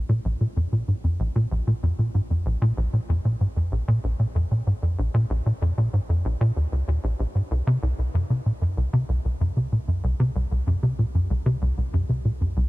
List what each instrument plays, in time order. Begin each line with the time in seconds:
Already playing: sub bass A#1
0.09 analog synth bass A#2
0.25 analog synth bass A#1
0.41 analog synth bass A#2
0.57 analog synth bass F2
0.73 analog synth bass A#2
0.88 analog synth bass G#2
1.04 analog synth bass F2
1.20 analog synth bass A#1
1.36 analog synth bass A#2
1.51 analog synth bass A#1
1.67 analog synth bass A#2
1.83 analog synth bass F2
1.99 analog synth bass A#2
2.15 analog synth bass G#2
2.30 analog synth bass F2
2.46 analog synth bass A#1
2.62 analog synth bass A#2
2.77 analog synth bass A#1
2.93 analog synth bass A#2
3.09 analog synth bass F2
3.25 analog synth bass A#2
3.41 analog synth bass G#2
3.57 analog synth bass F2
3.72 analog synth bass A#1
3.88 analog synth bass A#2
4.04 analog synth bass A#1
4.20 analog synth bass A#2
4.35 analog synth bass F2
4.51 analog synth bass A#2
4.67 analog synth bass G#2
4.83 analog synth bass F2
4.99 analog synth bass A#1
5.14 analog synth bass A#2
5.30 analog synth bass A#1
5.46 analog synth bass A#2
5.62 analog synth bass F2
5.78 analog synth bass A#2
5.93 analog synth bass G#2
6.09 analog synth bass F2
6.25 analog synth bass A#1
6.41 analog synth bass A#2
6.57 analog synth bass D#2
6.72 analog synth bass C#2
6.88 analog synth bass D#2
7.04 analog synth bass A#1
7.20 analog synth bass A#1
7.35 analog synth bass G#2
7.51 analog synth bass C2, sub bass C2
7.67 analog synth bass C3
7.83 analog synth bass C2
7.99 analog synth bass C2
8.14 analog synth bass F#2
8.30 analog synth bass C3
8.46 analog synth bass A#2
8.62 analog synth bass F#2
8.77 analog synth bass C2
8.93 analog synth bass C3
9.09 analog synth bass C2
9.25 analog synth bass C2
9.41 analog synth bass F#2
9.57 analog synth bass C3
9.72 analog synth bass A#2
9.88 analog synth bass F#2
10.04 analog synth bass C2
10.20 analog synth bass C3
10.36 analog synth bass C2
10.51 analog synth bass C2
10.67 analog synth bass F#2
10.83 analog synth bass C3
10.99 analog synth bass A#2
11.15 analog synth bass F#2
11.30 analog synth bass C2
11.46 analog synth bass C3
11.62 analog synth bass C2
11.78 analog synth bass C2
11.94 analog synth bass F#2
12.09 analog synth bass C3
12.25 analog synth bass A#2
12.41 analog synth bass F#2
12.57 analog synth bass C2